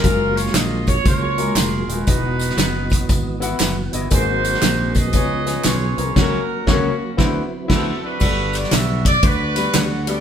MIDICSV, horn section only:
0, 0, Header, 1, 2, 480
1, 0, Start_track
1, 0, Key_signature, 6, "major"
1, 0, Tempo, 510638
1, 39, Time_signature, 4, 2, 24, 8
1, 9591, End_track
2, 0, Start_track
2, 0, Title_t, "Horn section"
2, 0, Program_c, 0, 61
2, 0, Note_on_c, 0, 61, 70
2, 0, Note_on_c, 0, 65, 74
2, 0, Note_on_c, 0, 70, 88
2, 344, Note_on_c, 0, 73, 91
2, 353, Note_off_c, 0, 70, 0
2, 516, Note_off_c, 0, 73, 0
2, 523, Note_on_c, 0, 75, 90
2, 789, Note_off_c, 0, 61, 0
2, 795, Note_off_c, 0, 65, 0
2, 827, Note_on_c, 0, 73, 89
2, 829, Note_off_c, 0, 75, 0
2, 997, Note_off_c, 0, 73, 0
2, 1008, Note_on_c, 0, 70, 73
2, 1010, Note_on_c, 0, 73, 96
2, 1011, Note_on_c, 0, 65, 71
2, 1449, Note_off_c, 0, 73, 0
2, 1486, Note_on_c, 0, 68, 81
2, 1789, Note_off_c, 0, 68, 0
2, 1794, Note_on_c, 0, 66, 61
2, 1795, Note_on_c, 0, 71, 90
2, 1801, Note_on_c, 0, 63, 66
2, 1922, Note_off_c, 0, 70, 0
2, 1923, Note_off_c, 0, 65, 0
2, 3188, Note_off_c, 0, 66, 0
2, 3192, Note_off_c, 0, 63, 0
2, 3226, Note_off_c, 0, 71, 0
2, 3879, Note_on_c, 0, 63, 76
2, 3881, Note_on_c, 0, 66, 76
2, 3893, Note_on_c, 0, 72, 98
2, 4634, Note_off_c, 0, 72, 0
2, 4664, Note_on_c, 0, 68, 76
2, 4670, Note_on_c, 0, 71, 78
2, 4674, Note_on_c, 0, 75, 110
2, 4798, Note_off_c, 0, 63, 0
2, 4799, Note_off_c, 0, 66, 0
2, 5319, Note_off_c, 0, 68, 0
2, 5319, Note_off_c, 0, 75, 0
2, 5324, Note_on_c, 0, 65, 72
2, 5325, Note_on_c, 0, 73, 92
2, 5330, Note_on_c, 0, 68, 61
2, 5589, Note_off_c, 0, 71, 0
2, 5766, Note_off_c, 0, 65, 0
2, 5769, Note_off_c, 0, 68, 0
2, 5799, Note_on_c, 0, 61, 62
2, 5800, Note_off_c, 0, 73, 0
2, 5801, Note_on_c, 0, 70, 90
2, 5804, Note_on_c, 0, 66, 68
2, 6272, Note_off_c, 0, 66, 0
2, 6278, Note_off_c, 0, 70, 0
2, 6280, Note_off_c, 0, 61, 0
2, 6283, Note_on_c, 0, 58, 50
2, 6283, Note_on_c, 0, 66, 71
2, 6291, Note_on_c, 0, 61, 48
2, 6727, Note_off_c, 0, 58, 0
2, 6731, Note_off_c, 0, 61, 0
2, 6760, Note_off_c, 0, 66, 0
2, 7262, Note_on_c, 0, 69, 78
2, 7539, Note_off_c, 0, 69, 0
2, 7559, Note_on_c, 0, 62, 75
2, 7560, Note_on_c, 0, 66, 73
2, 7574, Note_on_c, 0, 71, 84
2, 8042, Note_off_c, 0, 71, 0
2, 8054, Note_on_c, 0, 74, 93
2, 8212, Note_off_c, 0, 74, 0
2, 8224, Note_on_c, 0, 76, 96
2, 8478, Note_off_c, 0, 62, 0
2, 8478, Note_off_c, 0, 66, 0
2, 8521, Note_off_c, 0, 76, 0
2, 8527, Note_on_c, 0, 74, 94
2, 8689, Note_off_c, 0, 74, 0
2, 8689, Note_on_c, 0, 62, 73
2, 8690, Note_on_c, 0, 71, 97
2, 8693, Note_on_c, 0, 66, 72
2, 9166, Note_off_c, 0, 71, 0
2, 9175, Note_on_c, 0, 78, 97
2, 9478, Note_off_c, 0, 78, 0
2, 9484, Note_on_c, 0, 67, 80
2, 9485, Note_on_c, 0, 74, 108
2, 9487, Note_on_c, 0, 69, 75
2, 9591, Note_off_c, 0, 62, 0
2, 9591, Note_off_c, 0, 66, 0
2, 9591, Note_off_c, 0, 67, 0
2, 9591, Note_off_c, 0, 69, 0
2, 9591, Note_off_c, 0, 74, 0
2, 9591, End_track
0, 0, End_of_file